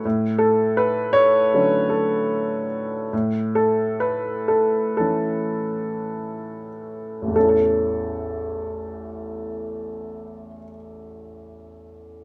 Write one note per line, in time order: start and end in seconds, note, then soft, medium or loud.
0.05 3.09 A2 soft
0.38 0.78 A4 medium
0.77 1.16 B4 medium
1.13 1.93 C#5 medium
1.54 3.09 D3 soft
1.54 3.09 F#3 soft
1.54 3.09 C#4 soft
1.90 2.66 A4 soft
3.13 7.32 A2 soft
3.55 3.98 A4 medium
4.00 4.50 B4 medium
4.48 4.96 A4 medium
4.97 7.32 E3 soft
4.97 7.32 A3 soft
4.97 7.32 C#4 soft
4.97 6.68 A4 soft
7.22 10.47 A1 soft
7.28 10.53 E2 soft
7.33 10.59 A3 soft
7.33 7.48 A4 soft
7.39 10.64 C#4 soft
7.44 10.69 E4 soft
7.49 10.75 A4 soft